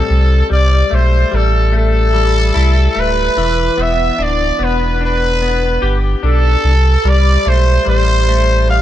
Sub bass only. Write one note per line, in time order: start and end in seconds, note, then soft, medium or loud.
0.10 0.43 C2 loud
0.51 0.84 C2 medium
0.92 1.25 B1 medium
1.33 2.52 A1 loud
2.56 2.88 C2 medium
2.96 3.29 D1 medium
3.37 3.70 E1 loud
3.78 4.11 E1 loud
4.19 4.52 D1 loud
4.59 5.78 E1 medium
5.82 6.15 G1 loud
6.23 6.56 B1 medium
6.64 6.97 C2 loud
7.04 7.38 C2 loud
7.46 7.79 B1 medium
7.87 8.82 A1 loud